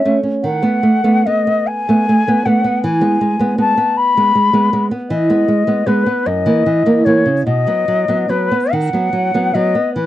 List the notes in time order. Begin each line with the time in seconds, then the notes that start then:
Already playing: E5
0.05 A3 C#4
0.23 C#4
0.43 D#3 F#5
0.62 A3 B3
0.83 A3
1.04 A3 B3
1.26 A3 B3 D#5
1.47 B3
1.67 G#5
1.89 A3 B3
2.09 A3
2.28 A3 B3
2.45 A3 B3 F#5
2.64 B3
2.83 E3 G#5
3.01 G#3 B3
3.21 G#3
3.39 G#3 B3
3.58 G#3 B3 A5
3.78 B3
3.97 B5
4.17 G#3 B3
4.35 G#3
4.53 G#3 B3
4.73 G#3 B3
4.91 B3
5.09 E3 D#5
5.30 G#3 B3
5.48 G#3
5.67 G#3 B3
5.86 G#3 B3 B4
6.06 B3
6.26 F#2 D#5
6.46 E3 A#3
6.66 E3
6.86 E3 A#3
7.04 E3 A#3 C#5
7.26 C#3
7.45 B2 D#5
7.67 F#3 B3
7.88 F#3
8.08 F#3 B3
8.29 F#3 B3 B4
8.51 B3
8.72 D#3 F#5
8.93 F#3 B3
9.13 F#3
9.34 F#3 B3
9.54 F#3 B3 D#5
9.75 B3
9.94 E3 B4